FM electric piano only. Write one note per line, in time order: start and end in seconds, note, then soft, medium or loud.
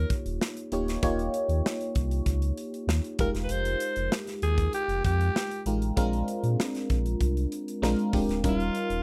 0.00 0.72 A#3 medium
0.00 0.72 D#4 medium
0.00 0.73 F4 medium
0.00 0.73 G4 medium
0.00 0.73 C#5 medium
0.72 0.94 A#3 medium
0.72 0.94 D#4 medium
0.72 0.95 F4 medium
0.72 0.95 G4 medium
0.72 0.95 C#5 medium
1.03 1.92 A#3 medium
1.03 1.92 D#4 medium
1.03 1.92 F4 medium
1.03 1.92 G4 medium
1.03 1.92 C#5 loud
3.19 3.26 G3 medium
3.19 4.18 D#4 medium
3.19 4.18 F4 medium
3.19 4.18 G4 medium
3.19 4.18 A#4 medium
3.26 4.21 G#3 medium
5.66 5.88 G#3 medium
5.66 5.88 D#4 soft
5.66 5.89 F4 medium
5.66 5.89 G4 medium
5.66 5.89 A#4 medium
5.97 6.86 G#3 medium
5.97 6.86 C4 medium
5.97 6.86 D4 medium
5.97 6.86 F4 medium
5.97 6.87 A#4 loud
7.82 8.07 G#3 medium
7.82 8.07 C4 medium
7.82 8.07 D4 medium
7.82 8.07 F4 medium
7.82 8.07 A#4 medium
8.13 8.35 G#3 medium
8.13 8.35 C4 medium
8.13 8.36 D4 medium
8.13 8.36 F4 medium
8.13 8.36 G4 medium
8.43 9.03 G3 medium
8.43 9.03 C#4 medium
8.43 9.03 D#4 medium
8.43 9.03 F4 medium
8.43 9.03 A#4 medium